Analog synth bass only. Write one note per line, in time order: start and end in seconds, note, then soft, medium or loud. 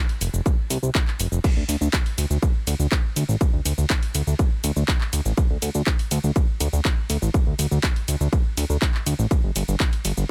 0.21 0.29 F1 medium
0.34 0.41 F1 medium
0.70 0.78 C2 loud
0.83 0.90 C2 medium
1.19 1.27 F1 loud
1.32 1.39 F1 medium
1.57 1.64 D2 medium
1.68 1.76 D2 medium
1.81 1.88 D2 medium
2.18 2.25 D2 medium
2.30 2.38 D2 medium
2.67 2.75 D2 loud
2.79 2.87 D2 medium
3.16 3.24 D2 loud
3.29 3.36 A1 medium
3.53 3.61 D2 medium
3.65 3.73 D2 loud
3.78 3.85 D2 medium
4.15 4.22 D2 loud
4.27 4.34 D2 medium
4.64 4.71 D2 loud
4.76 4.84 D2 medium
5.13 5.21 D2 medium
5.26 5.33 A1 medium
5.50 5.57 D2 medium
5.62 5.70 D2 medium
5.75 5.82 D2 medium
6.11 6.19 D2 loud
6.24 6.31 D2 medium
6.60 6.68 D2 loud
6.73 6.80 D2 medium
7.10 7.17 D2 loud
7.22 7.29 A1 medium
7.47 7.54 D2 medium
7.59 7.66 D2 medium
7.71 7.79 D2 medium
8.08 8.16 D2 medium
8.20 8.28 D2 medium
8.57 8.65 D2 loud
8.70 8.77 D2 medium
9.06 9.14 D2 medium
9.19 9.26 A1 medium
9.44 9.51 G1 medium
9.56 9.63 G1 medium
9.68 9.75 G1 medium
10.05 10.12 G1 loud
10.17 10.25 G1 medium